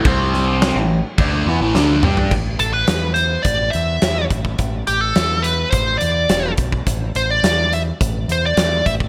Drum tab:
CC |x---x---x-------|x---------------|----------------|----------------|
HH |----------------|--x-x-x-x-x-x-x-|x-x-x-x-x-x-x-x-|x-x-x-x-x-x-x-x-|
SD |--o-o-------o---|----o-------o---|----o-------o---|----o-------o---|
T2 |--------------o-|----------------|----------------|----------------|
FT |---------------o|----------------|----------------|----------------|
BD |o-------o-------|o-------o-----oo|o-------o-----oo|o-------o-----oo|